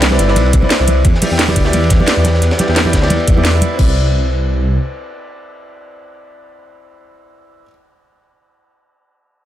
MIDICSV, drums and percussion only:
0, 0, Header, 1, 2, 480
1, 0, Start_track
1, 0, Key_signature, 0, "major"
1, 0, Tempo, 342857
1, 1467, Time_signature, 4, 2, 24, 8
1, 13230, End_track
2, 0, Start_track
2, 0, Title_t, "Drums"
2, 25, Note_on_c, 9, 51, 77
2, 27, Note_on_c, 9, 38, 102
2, 27, Note_on_c, 9, 42, 70
2, 33, Note_off_c, 9, 38, 0
2, 33, Note_on_c, 9, 38, 99
2, 151, Note_on_c, 9, 63, 56
2, 155, Note_off_c, 9, 38, 0
2, 155, Note_on_c, 9, 38, 47
2, 165, Note_off_c, 9, 51, 0
2, 167, Note_off_c, 9, 42, 0
2, 267, Note_on_c, 9, 42, 84
2, 269, Note_off_c, 9, 38, 0
2, 269, Note_on_c, 9, 38, 44
2, 270, Note_on_c, 9, 51, 64
2, 291, Note_off_c, 9, 63, 0
2, 393, Note_off_c, 9, 38, 0
2, 393, Note_on_c, 9, 38, 32
2, 407, Note_off_c, 9, 42, 0
2, 410, Note_off_c, 9, 51, 0
2, 506, Note_on_c, 9, 63, 76
2, 507, Note_on_c, 9, 42, 72
2, 511, Note_on_c, 9, 51, 84
2, 533, Note_off_c, 9, 38, 0
2, 646, Note_off_c, 9, 63, 0
2, 647, Note_off_c, 9, 42, 0
2, 648, Note_off_c, 9, 51, 0
2, 648, Note_on_c, 9, 51, 38
2, 745, Note_on_c, 9, 42, 89
2, 748, Note_on_c, 9, 36, 94
2, 756, Note_off_c, 9, 51, 0
2, 756, Note_on_c, 9, 51, 67
2, 874, Note_on_c, 9, 63, 54
2, 885, Note_off_c, 9, 42, 0
2, 888, Note_off_c, 9, 36, 0
2, 896, Note_off_c, 9, 51, 0
2, 986, Note_on_c, 9, 38, 100
2, 986, Note_on_c, 9, 42, 68
2, 988, Note_on_c, 9, 51, 86
2, 995, Note_off_c, 9, 38, 0
2, 995, Note_on_c, 9, 38, 93
2, 1014, Note_off_c, 9, 63, 0
2, 1126, Note_off_c, 9, 42, 0
2, 1128, Note_off_c, 9, 51, 0
2, 1135, Note_off_c, 9, 38, 0
2, 1226, Note_on_c, 9, 42, 84
2, 1228, Note_on_c, 9, 51, 61
2, 1232, Note_on_c, 9, 63, 84
2, 1366, Note_off_c, 9, 42, 0
2, 1368, Note_off_c, 9, 51, 0
2, 1372, Note_off_c, 9, 63, 0
2, 1464, Note_on_c, 9, 51, 80
2, 1465, Note_on_c, 9, 42, 72
2, 1467, Note_on_c, 9, 36, 102
2, 1602, Note_on_c, 9, 38, 34
2, 1604, Note_off_c, 9, 51, 0
2, 1605, Note_off_c, 9, 42, 0
2, 1607, Note_off_c, 9, 36, 0
2, 1705, Note_on_c, 9, 42, 88
2, 1709, Note_on_c, 9, 46, 74
2, 1710, Note_on_c, 9, 63, 85
2, 1742, Note_off_c, 9, 38, 0
2, 1845, Note_off_c, 9, 42, 0
2, 1849, Note_off_c, 9, 46, 0
2, 1850, Note_off_c, 9, 63, 0
2, 1946, Note_on_c, 9, 38, 101
2, 1946, Note_on_c, 9, 42, 71
2, 1953, Note_on_c, 9, 51, 75
2, 1955, Note_off_c, 9, 38, 0
2, 1955, Note_on_c, 9, 38, 99
2, 2075, Note_on_c, 9, 63, 59
2, 2082, Note_off_c, 9, 51, 0
2, 2082, Note_on_c, 9, 51, 40
2, 2086, Note_off_c, 9, 42, 0
2, 2095, Note_off_c, 9, 38, 0
2, 2185, Note_off_c, 9, 51, 0
2, 2185, Note_on_c, 9, 42, 87
2, 2185, Note_on_c, 9, 51, 60
2, 2187, Note_on_c, 9, 36, 54
2, 2215, Note_off_c, 9, 63, 0
2, 2305, Note_on_c, 9, 38, 40
2, 2325, Note_off_c, 9, 42, 0
2, 2325, Note_off_c, 9, 51, 0
2, 2327, Note_off_c, 9, 36, 0
2, 2425, Note_on_c, 9, 42, 72
2, 2431, Note_on_c, 9, 63, 73
2, 2432, Note_on_c, 9, 51, 81
2, 2445, Note_off_c, 9, 38, 0
2, 2565, Note_off_c, 9, 42, 0
2, 2571, Note_off_c, 9, 63, 0
2, 2572, Note_off_c, 9, 51, 0
2, 2572, Note_on_c, 9, 51, 43
2, 2658, Note_off_c, 9, 51, 0
2, 2658, Note_on_c, 9, 51, 65
2, 2665, Note_on_c, 9, 42, 90
2, 2666, Note_on_c, 9, 38, 49
2, 2668, Note_on_c, 9, 36, 89
2, 2798, Note_off_c, 9, 51, 0
2, 2800, Note_on_c, 9, 63, 58
2, 2805, Note_off_c, 9, 42, 0
2, 2806, Note_off_c, 9, 38, 0
2, 2808, Note_off_c, 9, 36, 0
2, 2892, Note_on_c, 9, 51, 75
2, 2903, Note_on_c, 9, 38, 94
2, 2906, Note_off_c, 9, 38, 0
2, 2906, Note_on_c, 9, 38, 94
2, 2906, Note_on_c, 9, 42, 72
2, 2940, Note_off_c, 9, 63, 0
2, 3032, Note_off_c, 9, 51, 0
2, 3046, Note_off_c, 9, 38, 0
2, 3046, Note_off_c, 9, 42, 0
2, 3140, Note_on_c, 9, 63, 78
2, 3142, Note_on_c, 9, 38, 90
2, 3146, Note_on_c, 9, 42, 88
2, 3149, Note_on_c, 9, 51, 78
2, 3275, Note_off_c, 9, 38, 0
2, 3275, Note_on_c, 9, 38, 43
2, 3280, Note_off_c, 9, 63, 0
2, 3286, Note_off_c, 9, 42, 0
2, 3289, Note_off_c, 9, 51, 0
2, 3387, Note_on_c, 9, 42, 72
2, 3392, Note_off_c, 9, 38, 0
2, 3392, Note_on_c, 9, 38, 33
2, 3399, Note_on_c, 9, 51, 50
2, 3516, Note_off_c, 9, 51, 0
2, 3516, Note_on_c, 9, 51, 74
2, 3523, Note_off_c, 9, 38, 0
2, 3523, Note_on_c, 9, 38, 85
2, 3527, Note_off_c, 9, 42, 0
2, 3626, Note_on_c, 9, 42, 89
2, 3629, Note_off_c, 9, 38, 0
2, 3629, Note_on_c, 9, 38, 45
2, 3632, Note_on_c, 9, 63, 86
2, 3656, Note_off_c, 9, 51, 0
2, 3749, Note_on_c, 9, 51, 59
2, 3763, Note_off_c, 9, 38, 0
2, 3763, Note_on_c, 9, 38, 32
2, 3766, Note_off_c, 9, 42, 0
2, 3772, Note_off_c, 9, 63, 0
2, 3866, Note_off_c, 9, 38, 0
2, 3866, Note_on_c, 9, 38, 98
2, 3866, Note_on_c, 9, 42, 71
2, 3870, Note_off_c, 9, 51, 0
2, 3870, Note_on_c, 9, 51, 82
2, 3874, Note_off_c, 9, 38, 0
2, 3874, Note_on_c, 9, 38, 110
2, 3990, Note_on_c, 9, 63, 57
2, 3994, Note_off_c, 9, 38, 0
2, 3994, Note_on_c, 9, 38, 49
2, 4006, Note_off_c, 9, 42, 0
2, 4010, Note_off_c, 9, 51, 0
2, 4100, Note_on_c, 9, 51, 72
2, 4105, Note_on_c, 9, 42, 84
2, 4108, Note_on_c, 9, 36, 52
2, 4112, Note_off_c, 9, 38, 0
2, 4112, Note_on_c, 9, 38, 95
2, 4130, Note_off_c, 9, 63, 0
2, 4232, Note_off_c, 9, 38, 0
2, 4232, Note_on_c, 9, 38, 95
2, 4240, Note_off_c, 9, 51, 0
2, 4245, Note_off_c, 9, 42, 0
2, 4247, Note_on_c, 9, 51, 67
2, 4248, Note_off_c, 9, 36, 0
2, 4337, Note_off_c, 9, 51, 0
2, 4337, Note_on_c, 9, 51, 80
2, 4342, Note_on_c, 9, 63, 76
2, 4345, Note_on_c, 9, 42, 72
2, 4372, Note_off_c, 9, 38, 0
2, 4477, Note_off_c, 9, 51, 0
2, 4479, Note_on_c, 9, 51, 40
2, 4482, Note_off_c, 9, 63, 0
2, 4485, Note_off_c, 9, 42, 0
2, 4585, Note_on_c, 9, 42, 90
2, 4588, Note_off_c, 9, 51, 0
2, 4588, Note_on_c, 9, 36, 91
2, 4588, Note_on_c, 9, 51, 63
2, 4725, Note_off_c, 9, 42, 0
2, 4725, Note_on_c, 9, 63, 58
2, 4728, Note_off_c, 9, 36, 0
2, 4728, Note_off_c, 9, 51, 0
2, 4827, Note_on_c, 9, 38, 97
2, 4827, Note_on_c, 9, 42, 71
2, 4865, Note_off_c, 9, 63, 0
2, 4967, Note_off_c, 9, 38, 0
2, 4967, Note_off_c, 9, 42, 0
2, 5061, Note_on_c, 9, 63, 83
2, 5063, Note_on_c, 9, 51, 61
2, 5066, Note_on_c, 9, 42, 84
2, 5201, Note_off_c, 9, 63, 0
2, 5203, Note_off_c, 9, 51, 0
2, 5206, Note_off_c, 9, 42, 0
2, 5306, Note_on_c, 9, 49, 76
2, 5307, Note_on_c, 9, 36, 103
2, 5446, Note_off_c, 9, 49, 0
2, 5447, Note_off_c, 9, 36, 0
2, 13230, End_track
0, 0, End_of_file